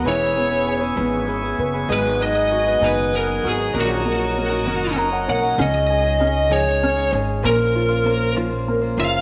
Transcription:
<<
  \new Staff \with { instrumentName = "Tonewheel organ" } { \time 6/8 \key dis \phrygian \tempo 4. = 65 << { <e'' cis'''>2. | <fis'' dis'''>2.~ | <fis'' dis'''>2. | \key des \major r2. |
r2. | } \\ { <b gis''>2.~ | <b gis''>2. | <cis'' ais''>2. | r2. |
r2. | } >> }
  \new Staff \with { instrumentName = "Lead electric guitar" } { \time 6/8 \key dis \phrygian cis''4 r2 | b'8 dis''4 b'8 ais'8 gis'8 | fis'2 r8 fis''8 | \key des \major ees''4. des''4 r8 |
bes'4. r4 f''8 | }
  \new Staff \with { instrumentName = "Felt piano" } { \time 6/8 \key dis \phrygian << { r2. | r2. | r2 ais''16 fis''16 cis''8 | \key des \major r2. |
r2. | } \\ { e8 b8 gis'8 b4 b'8 | gis8 dis'8 fis'8 dis'4 fis'8 | ais8 ais8 ais8 ais4 ais8 | des'8 aes'8 des'8 aes'8 des'8 aes'8 |
bes8 f'8 bes8 f'8 bes8 f'8 | } >> }
  \new Staff \with { instrumentName = "Clean electric guitar" } { \time 6/8 \key dis \phrygian <e gis cis' gis' b'>8 <gis cis' gis' b'>16 <cis' gis' b'>8 <cis' gis' b'>16 <e gis cis' gis' b'>8 <gis cis' gis' b'>16 <cis' gis' b'>8 <cis' gis' b'>16 | <gis, dis fis b dis' gis'>8 <fis b dis' gis'>16 <fis b dis' gis'>8 <fis b dis' gis'>16 <gis, dis fis b dis' gis'>8 <fis b dis' gis'>16 <fis b dis' gis'>8 <fis b dis' gis'>16 | <ais, dis fis cis' dis' ais'>8 <fis cis' dis' ais'>16 <fis cis' dis' ais'>8 <fis cis' dis' ais'>16 <ais, dis fis cis' dis' ais'>8 <fis cis' dis' ais'>16 <fis cis' dis' ais'>8 <fis cis' dis' ais'>16 | \key des \major <des f aes des' ees' aes'>16 <aes des' ees' aes'>8 <aes des' ees' aes'>16 <aes des' ees' aes'>8 <des f aes des' ees' aes'>16 <aes des' ees' aes'>8 <aes des' ees' aes'>16 <aes des' ees' aes'>8 |
<bes, f bes des' f' c''>16 <des' f' c''>8 <bes des' f' c''>16 <bes des' f' c''>8 <bes, f bes des' f' c''>16 <bes des' f' c''>8 <bes des' f' c''>16 <bes des' f' c''>8 | }
  \new Staff \with { instrumentName = "Upright bass" } { \clef bass \time 6/8 \key dis \phrygian e,,4. gis,,4 fis,,8 | gis,,4. fis,,4 gis,,8 | ais,,4. fis,,4 b,,8 | \key des \major des,2~ des,8 aes,,8 |
bes,,2~ bes,,8 ges,,8 | }
>>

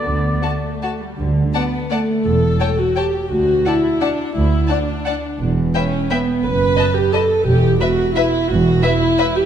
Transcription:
<<
  \new Staff \with { instrumentName = "Violin section" } { \time 3/4 \key d \major \tempo 4 = 171 r4 a''4 a''4 | r4 a''4 a''4 | r4 a''4 a''4 | r4 a''4 a''4 |
r4 a''4 a''4 | r4 g''4 g''4 | r4 a''4 a''4 | r4 e''4 e''4 |
r4 e''4 e''4 | }
  \new Staff \with { instrumentName = "Oboe" } { \time 3/4 \key d \major d''2 r4 | r2. | r2. | r2. |
r2. | r2. | r2. | r2. |
r2. | }
  \new Staff \with { instrumentName = "Violin section" } { \time 3/4 \key d \major r4 fis'4 fis'4 | r4 <d'' fis''>4 <d'' fis''>4 | r4 <cis'' g''>4 <cis'' g''>4 | r4 <d'' fis''>4 <d'' fis''>4 |
r4 <d'' fis''>4 <d'' fis''>4 | r4 <b' e''>4 <b' e''>4 | r4 <b' dis''>4 <b' dis''>4 | r4 <b' e''>4 <b' e''>4 |
r4 <b' e''>4 <b' e''>4 | }
  \new Staff \with { instrumentName = "Viola section" } { \time 3/4 \key d \major b4 a4. g8 | r4 b4 a4 | a'4. fis'8 g'4 | fis'4 e'4 d'4 |
e'4 d'2 | r4 cis'4 b4 | b'4. g'8 a'4 | g'4 fis'4 e'4 |
fis'4 e'4. g'8 | }
  \new Staff \with { instrumentName = "Cello section" } { \clef bass \time 3/4 \key d \major d4 r2 | d4 r2 | e,4 r2 | d,4 r2 |
d,4 r2 | e,4 r2 | fis,4 r2 | e,4 r2 |
e,4 r2 | }
  \new Staff \with { instrumentName = "Double bass section" } { \clef bass \time 3/4 \key d \major d,4 r2 | d,4 r2 | e,,4 r2 | d,4 r2 |
d,4 r2 | e,,4 r2 | fis,,4 r2 | e,,4 r2 |
e,,4 r2 | }
>>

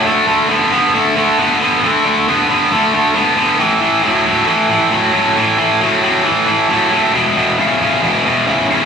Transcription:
\new Staff \with { instrumentName = "Distorted electric guitar" } { \clef bass \time 4/4 \key a \major \tempo 4 = 136 <d a>8 <d a>8 <d b>8 <d b>8 <d a>8 <d a>8 <d b>8 <d b>8 | <d a>8 <d a>8 <d b>8 <d b>8 <d a>8 <d a>8 <d b>8 <d b>8 | <a, e>8 <a, e>8 <a, fis>8 <a, fis>8 <a, e>8 <a, e>8 <a, fis>8 <a, fis>8 | <a, e>8 <a, e>8 <a, fis>8 <a, fis>8 <a, e>8 <a, e>8 <a, fis>8 <a, fis>8 |
<e, b,>8 <e, b,>8 <e, cis>8 <e, cis>8 <e, b,>8 <e, b,>8 <e, cis>8 <e, cis>8 | }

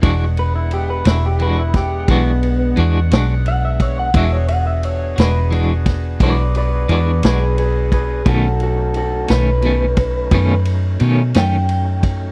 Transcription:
<<
  \new Staff \with { instrumentName = "Clean electric guitar" } { \time 12/8 \key e \mixolydian \tempo 4. = 58 r8 b'16 e'16 g'16 b'16 e'16 g'16 b'16 e'16 g'8 b4 r4 fis''16 e''16 cis''16 fis''16 | e''16 cis''16 fis''16 e''16 cis''8 b'8 r4 <b' d''>8 <b' d''>8 <b' d''>8 <gis' b'>8 <gis' b'>8 <gis' b'>8 | <fis' a'>8 <fis' a'>8 <fis' a'>8 b'2 r4 g''4. | }
  \new Staff \with { instrumentName = "Tonewheel organ" } { \time 12/8 \key e \mixolydian <gis b d' fis''>1. | <b d' fis' gis'>1. | <fis a cis' dis'>1. | }
  \new Staff \with { instrumentName = "Clean electric guitar" } { \time 12/8 \key e \mixolydian <e gis d' fis'>8 r4 <gis d' fis'>8 <e gis d' fis'>8 r8 <e gis d' fis'>8 r8 <e gis d' fis'>8 <gis d' fis'>8 r4 | <e gis d' fis'>8 r4 <gis d' fis'>8 <e gis d' fis'>8 r8 <e gis d' fis'>8 r8 <e gis d' fis'>8 <gis d' fis'>8 r4 | <b, dis a cis'>8 r4 <dis a cis'>8 <b, dis a cis'>8 r8 <b, dis a cis'>8 r8 <b, dis a cis'>8 <dis a cis'>8 r4 | }
  \new Staff \with { instrumentName = "Picked electric bass" } { \clef bass \time 12/8 \key e \mixolydian e,,4. e,,4. b,,4 e,8 b,,4. | e,,4. e,,4. b,,4 e,8 b,,4. | b,,4. b,,4. fis,4 b,8 fis,4. | }
  \new DrumStaff \with { instrumentName = "Drums" } \drummode { \time 12/8 <bd cymr>8 cymr8 cymr8 <cymr sn>8 cymr8 <bd cymr sn>8 <bd cymr>8 cymr8 cymr8 <cymr sn>8 cymr8 <bd cymr>8 | <bd cymr>8 cymr8 cymr8 <cymr sn>8 cymr8 <bd cymr sn>8 <bd cymr>8 cymr8 cymr8 <cymr sn>8 cymr8 <bd cymr>8 | <bd cymr>8 cymr8 cymr8 <cymr sn>8 cymr8 <bd cymr>8 <bd cymr>8 cymr8 cymr8 <cymr sn>8 cymr8 <bd cymr>8 | }
>>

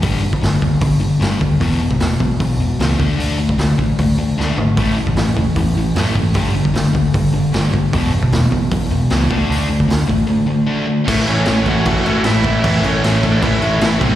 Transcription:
<<
  \new Staff \with { instrumentName = "Lead electric guitar" } { \time 4/4 \key a \major \tempo 4 = 152 r1 | r1 | r1 | r1 |
r1 | r1 | r1 | r8 <cis' cis''>4 <fis' fis''>4. <e' e''>4 |
<e' e''>8 <cis' cis''>8 <cis' cis''>8 <d' d''>8 <e' e''>4. r8 | }
  \new Staff \with { instrumentName = "Distorted electric guitar" } { \clef bass \time 4/4 \key a \major r1 | r1 | r1 | r1 |
r1 | r1 | r1 | <a, e a>2~ <a, e a>8 <a, e a>8 <a, e a>4 |
<a, e a>2~ <a, e a>8 <a, e a>8 <a, e a>8 <c g c'>8 | }
  \new Staff \with { instrumentName = "Distorted electric guitar" } { \clef bass \time 4/4 \key a \major <g, d g>8 <g, d>8 <g, d>8 <g, d>8 <g, d>8 <g, d>8 <g, d g>8 <g, d>8 | <e, b, e>8 <e, b,>8 <e, b,>8 <e, b,>8 <e, b,>8 <e, b,>8 <e, b, e>8 <d a d'>8 | <d a d'>8 <d a>8 <d a>8 <d a>8 <d a>8 <d a>8 <d a d'>8 <d a>8 | <a, e a>8 <a, e>8 <a, e>8 <a, e>8 <a, e>8 <a, e>8 <a, e a>8 <a, e>8 |
<g, d g>8 <g, d>8 <g, d>8 <g, d>8 <g, d>8 <g, d>8 <g, d g>8 <g, d>8 | <e, b, e>8 <e, b,>8 <e, b,>8 <e, b,>8 <e, b,>8 <e, b,>8 <e, b, e>8 <d a d'>8 | <d a d'>8 <d a>8 <d a>8 <d a>8 <d a>8 <d a>8 <d a d'>8 <d a>8 | <a, e a>8 <a, e a>8 <a, e a>8 <a, e a>8 <a, e a>8 <a, e a>8 <a, e a>8 <a, e a>8 |
<a, e a>8 <a, e a>8 <a, e a>8 <a, e a>8 <a, e a>8 <a, e a>8 <a, e a>8 <c g c'>8 | }
  \new Staff \with { instrumentName = "Distorted electric guitar" } { \clef bass \time 4/4 \key a \major r1 | r1 | r1 | <a, e a>8 <a, e>8 <a, e>8 <a, e>8 <a, e>8 <a, e>8 <a, e a>8 <a, e>8 |
<g, d g>8 <g, d>8 <g, d>8 <g, d>8 <g, d>8 <g, d>8 <g, d g>8 <g, d>8 | <e, b, e>8 <e, b,>8 <e, b,>8 <e, b,>8 <e, b,>8 <e, b,>8 <e, b, e>8 <d a d'>8 | <d a d'>8 <d a>8 <d a>8 <d a>8 <d a>8 <d a>8 <d a d'>8 <d a>8 | <a, e a>8 <a, e a>8 <a, e a>8 <a, e a>8 <a, e a>8 <a, e a>8 <a, e a>8 <a, e a>8 |
<a, e a>8 <a, e a>8 <a, e a>8 <a, e a>8 <a, e a>8 <a, e a>8 <a, e a>8 <c g c'>8 | }
  \new Staff \with { instrumentName = "Picked electric bass" } { \clef bass \time 4/4 \key a \major g,,4 g,,8 d,8 g,,4 g,,8 dis,8 | e,,4 e,,8 b,,8 b,,8 e,,8 cis,8 d,8 | d,4 d,8 a,,8 d,4 d,8 gis,,8 | a,,4 a,,8 e,,8 e,8 a,,8 fis,8 gis,,8 |
g,,4 g,,8 d,8 g,,4 g,,8 g,,8 | e,,4 e,,8 b,,8 b,,8 e,,8 cis,8 d,8 | d,4 d,8 a,,8 r2 | a,,8 a,,8 a,,8 a,,8 a,,8 a,,8 a,,8 a,,8 |
a,,8 a,,8 a,,8 a,,8 a,,8 a,,8 a,,8 c,8 | }
  \new DrumStaff \with { instrumentName = "Drums" } \drummode { \time 4/4 <hho bd>8. bd16 <hho sn>8 bd8 <hho bd>4 <hho sn>8 bd8 | <hho bd>8. bd16 <hho sn>8 bd8 <hho bd>4 <hho sn>8 bd8 | hho8. bd16 <hho sn>8 bd8 <hho bd>4 sn8 tomfh8 | <hho bd>8. bd16 <hho sn>8 bd8 <hho bd>4 <hho sn>8 bd8 |
<hho bd>8. bd16 <hho sn>8 bd8 <hho bd>4 <hho sn>8 bd8 | <hho bd>8. bd16 <hho sn>8 bd8 <hho bd>4 <hho sn>8 bd8 | hho8. bd16 <hho sn>8 bd8 r4 r4 | <cymc bd>8 cymc8 <cymc sn>8 <cymc bd>8 <cymc bd>8 cymc8 <cymc sn>8 <cymc bd>8 |
<cymc bd>8 cymc8 <cymc sn>8 <cymc bd>8 <cymc bd>8 cymc8 <cymc sn>8 <cymc bd>8 | }
>>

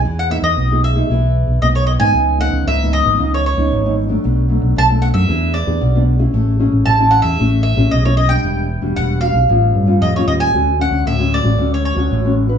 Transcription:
<<
  \new Staff \with { instrumentName = "Mandolin" } { \time 4/4 \key e \major \tempo 4 = 114 r16 fis''16 e''16 dis''8. e''4. dis''16 cis''16 dis''16 gis''16~ | \key cis \minor gis''8 fis''8 e''8 dis''8. cis''16 cis''4 r8 | r4 a''8 fis''16 e''8. d''4 r8 | r4 a''8 fis''16 e''8. e''8 dis''16 cis''16 dis''16 g''16~ |
g''4 fis''8 eis''4. dis''16 cis''16 dis''16 gis''16~ | gis''8 fis''8 e''8 d''8. cis''16 cis''4 r8 | }
  \new Staff \with { instrumentName = "Nylon-string guitar" } { \time 4/4 \key e \major << { r8 <b dis' gis'>8. <b dis' gis'>8 <b dis' gis'>16 <b gis'>8. r16 <b dis' gis'>8. <e b dis'>16~ | \key cis \minor <e b dis'>8 <e b dis'>8. <e b dis'>8 <e b dis'>16 <e b dis'>8 r16 <e b dis'>8 <e b dis'>8 <fis a d'>16~ | <fis a d'>8 <fis a d'>8. <fis a d'>8. <b d' gis'>8 r16 <b d' gis'>8 <b d' gis'>8 <cis' e' gis'>16~ | <cis' e' gis'>8 <cis' e' gis'>8. <cis' e' gis'>8. <cis' e' gis'>8. <cis' e' gis'>8 <cis' e' gis'>8 <g d'>16~ |
<g d'>8 r16 <g d' fis'>8. <g d' fis'>16 r16 <g cis' eis'>8. <g cis' eis'>8 <g cis' eis'>8. | <gis cis' fis'>16 r16 <gis cis' fis'>8. <gis cis' fis'>8 <gis cis' fis'>16 <gis cis' fis'>8. <gis cis' fis'>8 <gis cis' fis'>8 <d' fis' b'>16 | } \\ { e4 b,4 e4 b,4 | cis4 gis,4 cis4 gis,4 | b,4 fis,4 e4 b,4 | a4 e4 a4 e4 |
e4 b,4 a,4 a,4 | d4 a,4 d4 a,4 | } >> }
  \new Staff \with { instrumentName = "Fingered electric bass" } { \clef bass \time 4/4 \key e \major e,8. e,16 b,,4 b,,8. b,,16 b,,8. gis,16 | \key cis \minor cis,8. cis,16 cis,8. gis,,16 cis,8. cis,16 gis,,4 | b,,8. b,,16 b,,8. fis,16 e,8. e,16 b,,4 | a,,8. a,,16 a,,8. e,16 a,,8. a,,16 b,,4 |
e,,8. e,,16 e,,8. b,,16 a,,8 g,8 eis,8 dis,8 | d,8. d,16 d,8. a,,16 d,8. d,16 a,,4 | }
>>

